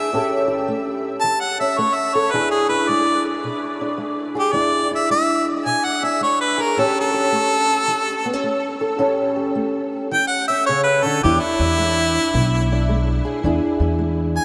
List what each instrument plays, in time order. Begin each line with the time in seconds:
Already playing: steel-string acoustic guitar D4 E4 G#4, harmonica E5
0.13 steel-string acoustic guitar A2 C#4 G4 A4
0.48 steel-string acoustic guitar G4
0.68 steel-string acoustic guitar A3
1.21 steel-string acoustic guitar E3, harmonica A5
1.40 harmonica F#5
1.60 steel-string acoustic guitar C#4, harmonica E5
1.78 steel-string acoustic guitar A3, harmonica C#5
1.95 harmonica E5
2.15 steel-string acoustic guitar A4, harmonica C#5
2.31 steel-string acoustic guitar E3 D4 E4, harmonica B4
2.35 steel-string acoustic guitar G#4
2.51 harmonica G#4
2.69 steel-string acoustic guitar E4, harmonica B4
2.89 steel-string acoustic guitar G#3, harmonica D5
3.44 steel-string acoustic guitar B2
3.81 steel-string acoustic guitar D4
3.98 steel-string acoustic guitar G#3
4.35 steel-string acoustic guitar G#4
4.39 harmonica G4
4.53 steel-string acoustic guitar E3 D4 E4, harmonica D5
4.91 steel-string acoustic guitar E4
4.95 harmonica E5
5.10 steel-string acoustic guitar G#3, harmonica E5
5.65 steel-string acoustic guitar B2, harmonica G#5
5.84 harmonica F#5
6.03 steel-string acoustic guitar D4, harmonica E5
6.21 steel-string acoustic guitar G#3, harmonica C#5
6.41 harmonica B4
6.58 steel-string acoustic guitar G#4, harmonica A#4
6.77 steel-string acoustic guitar A2 C#4 G4, harmonica A4
7.01 harmonica A4
7.14 steel-string acoustic guitar G4
7.32 steel-string acoustic guitar A3
7.87 steel-string acoustic guitar E3
8.25 steel-string acoustic guitar B3
8.33 steel-string acoustic guitar C#4
8.44 steel-string acoustic guitar A3
8.81 steel-string acoustic guitar A4
8.98 steel-string acoustic guitar A2 C#4 G4 A4
9.36 steel-string acoustic guitar G4
9.55 steel-string acoustic guitar A3
10.11 steel-string acoustic guitar E3, harmonica G5
10.27 harmonica F#5
10.48 steel-string acoustic guitar C#4, harmonica E5
10.66 steel-string acoustic guitar C#3, harmonica C#5
10.83 harmonica B4
11.03 steel-string acoustic guitar D3, harmonica A4
11.23 upright bass E2, steel-string acoustic guitar E3 D4 E4, harmonica G4
11.40 harmonica E4
11.60 upright bass E2, steel-string acoustic guitar D4
11.78 steel-string acoustic guitar G#3
12.34 upright bass B1, steel-string acoustic guitar B2
12.72 steel-string acoustic guitar D4
12.89 steel-string acoustic guitar G#3
13.25 steel-string acoustic guitar G#4
13.43 upright bass E2, steel-string acoustic guitar E3 D4 E4 G#4
13.80 upright bass E2, steel-string acoustic guitar E4
13.99 steel-string acoustic guitar G#3
14.37 harmonica G#5